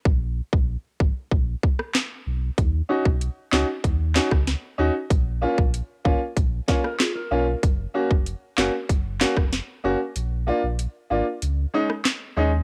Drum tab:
HH |----------------|x---x---x---x---|x---x---x---x---|x---x---x---x---|
CP |------------x---|------x---x-----|------------x---|------x---x-----|
SD |-----------ro---|------o---oro---|----------oro---|------o---oro---|
BD |o--o--o-o-o-----|o--o----o--o----|o--o--o-o-o-----|o--o----o--o----|

HH |x---x---x---x---|
CP |------------x---|
SD |-----------ro---|
BD |----------------|